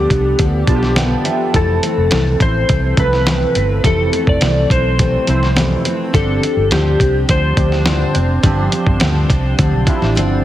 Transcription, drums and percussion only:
0.10 kick, closed hi-hat
0.39 kick, closed hi-hat
0.67 kick, closed hi-hat
0.83 snare
0.96 snare, closed hi-hat
1.25 closed hi-hat
1.54 kick, closed hi-hat
1.83 closed hi-hat
2.11 snare, closed hi-hat
2.40 kick, closed hi-hat
2.69 kick, closed hi-hat
2.97 kick, closed hi-hat
3.13 snare
3.27 snare, closed hi-hat
3.55 closed hi-hat
3.84 kick, closed hi-hat
4.13 closed hi-hat
4.27 kick
4.41 snare, closed hi-hat
4.70 kick, closed hi-hat
4.99 kick, closed hi-hat
5.27 closed hi-hat
5.43 snare
5.57 snare, closed hi-hat
5.85 closed hi-hat
6.14 kick, closed hi-hat
6.43 closed hi-hat
6.71 snare, closed hi-hat
7.00 kick, closed hi-hat
7.29 kick, closed hi-hat
7.57 kick, closed hi-hat
7.72 snare
7.86 snare, closed hi-hat
8.15 closed hi-hat
8.43 kick, closed hi-hat
8.72 closed hi-hat
8.87 kick
9.00 snare, closed hi-hat
9.30 kick, closed hi-hat
9.59 kick, closed hi-hat
9.87 kick, closed hi-hat
10.02 snare
10.17 closed hi-hat

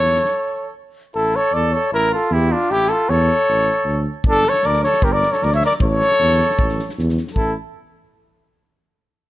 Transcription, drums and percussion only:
0.06 snare
0.16 snare
0.25 snare
4.24 kick
4.43 snare
4.54 snare
4.63 snare
4.73 snare
4.84 snare
4.93 snare
5.02 kick
5.22 snare
5.33 snare
5.42 snare
5.52 snare
5.61 snare
5.71 snare
5.80 kick
6.01 snare
6.11 snare
6.20 snare
6.30 snare
6.40 snare
6.50 snare
6.59 kick
6.69 snare
6.79 snare
6.89 snare
6.99 snare
7.09 snare
7.18 snare
7.27 snare
7.36 kick

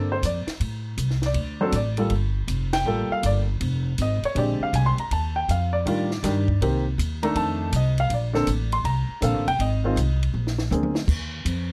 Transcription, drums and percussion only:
0.23 kick, hi-hat pedal, ride
0.47 snare, ride
0.60 kick, ride
0.98 kick, hi-hat pedal, ride
1.10 snare
1.22 snare, ride
1.34 kick, ride
1.72 kick, hi-hat pedal, ride
1.97 ride
2.10 kick, ride
2.48 kick, hi-hat pedal, ride
2.73 snare, ride
3.23 kick, hi-hat pedal, ride
3.61 kick, ride
3.98 kick, hi-hat pedal, ride
4.23 ride
4.36 kick, ride
4.73 kick, hi-hat pedal, ride
4.98 ride
5.11 kick, ride
5.49 kick, hi-hat pedal, ride
5.86 kick, ride
6.11 snare
6.23 kick, snare, hi-hat pedal, ride
6.48 kick
6.61 kick, ride
6.98 kick, hi-hat pedal, ride
7.23 ride
7.35 kick, ride
7.72 kick, hi-hat pedal, ride
7.98 ride
8.10 kick, ride
8.35 snare
8.47 kick, hi-hat pedal, ride
8.72 ride
8.84 kick, ride
9.22 kick, hi-hat pedal, ride
9.48 ride
9.59 kick, ride
9.96 kick, hi-hat pedal, ride
10.23 ride
10.47 snare
10.59 snare
10.71 hi-hat pedal, mid tom
10.83 mid tom
10.95 snare
11.08 kick, crash
11.45 kick, hi-hat pedal, ride

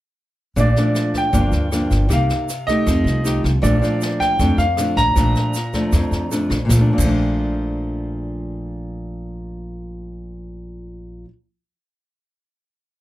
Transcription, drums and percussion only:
0.57 kick, snare, shaker
0.76 snare, shaker
0.95 cross-stick, snare, shaker
1.14 kick, snare, shaker
1.33 kick, snare, shaker
1.52 snare, shaker
1.72 cross-stick, snare, shaker
1.91 kick, snare, shaker
2.10 kick, cross-stick, snare, shaker
2.29 snare, shaker
2.49 snare, shaker
2.68 kick, snare, shaker
2.87 kick, cross-stick, snare, shaker
3.07 snare, shaker
3.25 snare, shaker
3.44 kick, cross-stick, snare, shaker
3.63 kick, snare, shaker
3.83 snare, shaker
4.01 cross-stick, snare, shaker
4.21 kick, snare, shaker
4.39 kick, snare, shaker
4.59 snare, shaker
4.77 cross-stick, snare, shaker
4.97 kick, snare, shaker
5.16 kick, cross-stick, snare, shaker
5.36 snare, shaker
5.54 snare, shaker
5.74 kick, snare, shaker
5.92 kick, cross-stick, snare, shaker
6.12 snare, shaker
6.32 snare, shaker
6.50 kick, cross-stick, snare, shaker
6.69 kick, snare, shaker
6.98 kick, crash, shaker

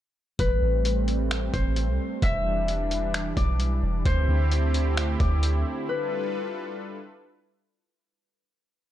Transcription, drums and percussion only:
0.39 kick, closed hi-hat
0.85 closed hi-hat
1.08 closed hi-hat
1.31 finger snap, closed hi-hat
1.54 kick, closed hi-hat
1.76 closed hi-hat
2.22 kick, closed hi-hat
2.68 closed hi-hat
2.91 closed hi-hat
3.14 finger snap, closed hi-hat
3.37 kick, closed hi-hat
3.60 closed hi-hat
4.05 kick, closed hi-hat
4.51 closed hi-hat
4.74 closed hi-hat
4.97 finger snap, closed hi-hat
5.20 kick, closed hi-hat
5.43 closed hi-hat

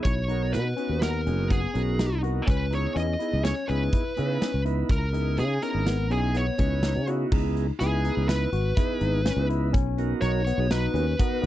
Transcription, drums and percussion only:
0.05 kick, closed hi-hat
0.29 closed hi-hat
0.54 snare, closed hi-hat
0.78 closed hi-hat
1.02 snare, closed hi-hat
1.27 closed hi-hat
1.50 kick, closed hi-hat
1.75 closed hi-hat
1.99 snare, closed hi-hat
2.24 closed hi-hat
2.48 kick, closed hi-hat
2.73 closed hi-hat
2.96 closed hi-hat
3.20 closed hi-hat
3.45 snare, closed hi-hat
3.69 closed hi-hat
3.93 kick, closed hi-hat
4.17 closed hi-hat
4.42 snare, closed hi-hat
4.66 closed hi-hat
4.89 kick, closed hi-hat
5.14 closed hi-hat
5.38 closed hi-hat
5.62 closed hi-hat
5.87 snare, closed hi-hat
6.11 closed hi-hat
6.35 closed hi-hat
6.58 kick, closed hi-hat
6.83 snare, closed hi-hat
7.07 closed hi-hat
7.32 kick, crash
7.57 closed hi-hat
7.80 snare, closed hi-hat
8.05 closed hi-hat
8.29 snare, closed hi-hat
8.53 closed hi-hat
8.77 kick, snare, closed hi-hat
9.01 closed hi-hat
9.26 snare, closed hi-hat
9.50 closed hi-hat
9.74 kick, closed hi-hat
9.98 closed hi-hat
10.22 closed hi-hat
10.47 closed hi-hat
10.71 snare, closed hi-hat
10.96 closed hi-hat
11.19 kick, closed hi-hat

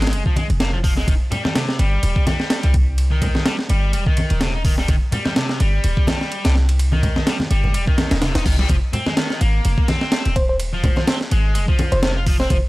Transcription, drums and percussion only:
0.02 snare, ride
0.07 snare, ride
0.13 ride
0.26 kick
0.36 ride, high conga
0.50 ride
0.60 snare, ride
0.84 kick, open hi-hat
0.97 snare
1.08 kick, ride
1.32 ride, low conga
1.45 snare, high conga
1.55 snare, ride
1.69 snare
1.79 ride
2.03 ride
2.16 kick
2.27 snare, ride, high conga
2.40 snare
2.50 snare, ride
2.63 ride
2.74 kick, ride
2.98 ride
3.22 kick, ride, low conga
3.35 snare, high conga
3.46 snare, ride
3.59 snare
3.69 ride
3.93 ride
4.06 kick
4.17 ride, high conga
4.30 ride
4.41 snare, ride
4.65 kick, open hi-hat
4.78 snare
4.88 kick, ride
5.12 ride, low conga
5.25 snare, high conga
5.36 snare, ride
5.49 snare
5.60 ride
5.84 ride
5.97 kick
6.07 snare, ride, high conga
6.21 snare
6.32 ride
6.45 snare, ride
6.56 snare
6.69 ride
6.79 ride
6.92 high conga
7.03 kick, ride, low conga
7.16 snare, high conga
7.27 snare, ride
7.40 snare, high conga
7.51 ride
7.64 low conga
7.74 ride
7.87 kick
7.98 snare, ride, high conga
8.11 snare, ride
8.22 snare, ride
8.35 snare, ride
8.46 kick, open hi-hat
8.59 snare
8.69 kick, ride
8.93 ride, low conga
9.06 snare, high conga
9.17 snare, ride
9.30 snare
9.41 ride
9.65 ride
9.78 kick
9.88 snare, ride, high conga
10.01 snare
10.12 snare, ride
10.25 ride
10.36 kick, ride
10.60 ride
10.83 kick, ride, low conga
10.96 snare, high conga
11.07 snare, ride
11.21 snare
11.31 ride
11.55 ride
11.68 kick
11.79 ride, high conga
11.92 ride
12.03 snare, ride
12.26 kick, open hi-hat
12.40 snare
12.50 kick, ride

